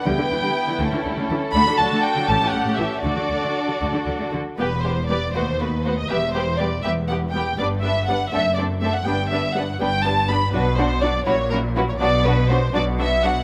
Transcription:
<<
  \new Staff \with { instrumentName = "Violin section" } { \time 6/8 \key d \major \tempo 4. = 81 g''2~ g''8 r8 | b''8 a''8 g''8 a''8 fis''8 e''8 | d''2~ d''8 r8 | \key e \minor b'8 c''8 d''8 c''8 b'8 c''16 dis''16 |
e''8 c''8 d''8 e''8 fis''8 g''8 | d''8 e''8 fis''8 e''8 d''8 e''16 fis''16 | g''8 e''8 fis''8 g''8 a''8 b''8 | b'8 c''8 d''8 cis''8 ais'8 b'16 cis''16 |
d''8 b'8 c''8 d''8 e''8 fis''8 | }
  \new Staff \with { instrumentName = "Violin section" } { \time 6/8 \key d \major << { b'4. a'4.~ | a'2. | a'2~ a'8 r8 | \key e \minor b'8 b'8 b'8 b'8 b'8 b'8 |
b'8 b'8 b'8 b'8 b'8 b'8 | b'8 b'8 b'8 a'8 a'8 a'8 | b'8 b'8 b'8 b'8 b'8 b'8 | fis'8 fis'8 fis'8 fis'8 fis'8 fis'8 |
fis'8 fis'8 fis'8 fis'8 fis'8 fis'8 | } \\ { e'2. | fis'4. g'4. | fis'2~ fis'8 r8 | g'8 g'8 g'8 fis'8 fis'8 fis'8 |
g'8 g'8 g'8 g'8 g'8 g'8 | d'8 d'8 d'8 d'8 d'8 d'8 | d'8 d'8 d'8 d'8 d'8 d'8 | d'8 d'8 d'8 e'8 e'8 e'8 |
d'8 d'8 d'8 d'8 d'8 d'8 | } >> }
  \new Staff \with { instrumentName = "Viola section" } { \time 6/8 \key d \major << { b4. cis'4. | d'4. cis'4. | d'2~ d'8 r8 | \key e \minor b8 b8 b8 b8 b8 b8 |
b8 b8 b8 b8 b8 b8 | b8 b8 b8 c'8 c'8 c'8 | b8 b8 b8 b8 b8 b8 | d'8 d'8 d'8 cis'8 cis'8 cis'8 |
b8 b8 b8 b8 b8 b8 | } \\ { g16 d16 e16 g16 r16 e16 a16 e16 g16 a16 e16 r16 | a16 d16 fis16 a16 r16 fis16 a16 e16 g16 a16 e16 r16 | a16 d16 fis16 a16 r16 fis16 a16 d16 fis16 a16 d16 r16 | g8 g8 g8 a8 a8 a8 |
g8 g8 g8 g8 g8 g8 | g8 g8 g8 a8 a8 a8 | g8 g8 g8 g8 g8 g8 | fis8 fis8 fis8 fis8 fis8 fis8 |
fis8 fis8 fis8 fis8 fis8 fis8 | } >> }
  \new Staff \with { instrumentName = "Cello section" } { \clef bass \time 6/8 \key d \major d16 d16 d16 d16 r16 d16 d16 d16 d16 d16 d16 r16 | d16 d16 d16 d16 r16 d16 a,16 a,16 a,16 a,16 a,16 r16 | d16 d16 d16 d16 r16 d16 d16 d16 d16 d16 d16 r16 | \key e \minor e,4~ e,16 r16 dis,4~ dis,16 r16 |
e,4~ e,16 r16 e,4~ e,16 r16 | g,4~ g,16 r16 fis,4~ fis,16 r16 | g,4~ g,16 r16 g,4~ g,16 r16 | b,4~ b,16 r16 ais,4~ ais,16 r16 |
b,4~ b,16 r16 b,4~ b,16 r16 | }
  \new Staff \with { instrumentName = "Double bass section" } { \clef bass \time 6/8 \key d \major d,16 r16 d,16 r8. d,16 r16 d,16 r16 d,16 r16 | d,16 r16 d,16 r8. a,,16 r16 a,,16 r16 a,,16 r16 | d,16 r16 d,16 r8. d,16 r16 d,16 r16 d,16 r16 | \key e \minor e,,4. dis,4. |
e,,4. e,,4. | g,,4. fis,,4. | g,,4. g,,4. | b,,4. ais,,4. |
b,,4. b,,4. | }
>>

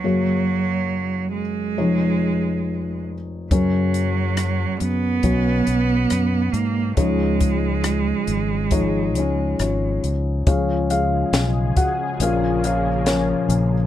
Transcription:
<<
  \new Staff \with { instrumentName = "Felt piano" } { \time 4/4 \key cis \mixolydian \tempo 4 = 69 << { r1 | r1 | r2 r8 <cis' cis''>8 <cis' eis' cis''>4 | <eis' eis''>8 <eis' gis' eis''>4 <fis' fis''>8 <eis' eis''>8 <eis' cis'' eis''>4. | } \\ { <fis ais gis' cis''>4. r8 <eis dis' gis' cis''>4. r8 | <fis cis' ais' cis''>4. r8 <fis cis' b' cis''>4. r8 | <eis dis' gis' cis''>4. r8 <eis dis' gis' cis''>4. r8 | <eis cis' gis' cis''>4. r8 <eis cis' ais' cis''>4 <eis cis' ais' cis''>4 | } >> }
  \new Staff \with { instrumentName = "Felt piano" } { \clef bass \time 4/4 \key cis \mixolydian <fis,, fis,>2 <eis,, eis,>2 | <fis,, fis,>2 <b,, b,>2 | <cis, cis>1 | <cis, cis>2 <ais,, ais,>2 | }
  \new Staff \with { instrumentName = "Analog synth pad" } { \clef bass \time 4/4 \key cis \mixolydian << { r1 | r1 | r1 | <cis gis'>1 | } \\ { r1 | r1 | r1 | gis2 <eis ais>2 | } >> }
  \new Staff \with { instrumentName = "Cello" } { \clef bass \time 4/4 \key cis \mixolydian fis4. gis2 r8 | fis4. b2 ais8 | gis2.~ gis8 r8 | r1 | }
  \new Staff \with { instrumentName = "Fingered electric bass" } { \clef bass \time 4/4 \key cis \mixolydian r1 | fis,4. fis,8 b,,8 b,,8 fis,8 gis,8 | cis,4. gis,,4 cis,8 gis,,8 cis,8 | cis,4 b,,8 r8 ais,,4. ais,,8 | }
  \new DrumStaff \with { instrumentName = "Drums" } \drummode { \time 4/4 r4 r4 r4 r4 | <hh bd>8 hh8 <hh ss>8 hh8 <hh bd>8 hh8 <hh ss>8 hh8 | <hh bd>8 <hh bd>8 <hh ss>8 hh8 <hh bd>8 hh8 <hh ss>8 hh8 | <hh bd>8 hh8 <hh sn>8 <hh bd>8 hh8 hh8 <hh sn>8 hh8 | }
>>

